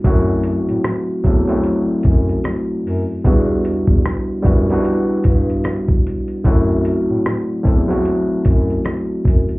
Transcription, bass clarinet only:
0.05 F#2
0.68 A2
1.25 E2
2.05 F#2
2.85 F#2
3.25 E2
3.88 E2
4.44 F#2
5.25 G2
6.45 F#2
7.08 A2
7.65 E2
8.46 F#2
9.25 F#2

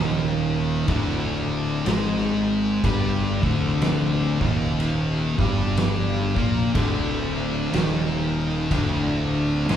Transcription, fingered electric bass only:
Already playing: D#1
0.88 D1
1.87 G#1
2.84 G1
3.43 D1
4.41 D#1
5.39 G1
6.37 A#1
6.75 D1
7.73 D#1
8.71 D1
9.69 G#1

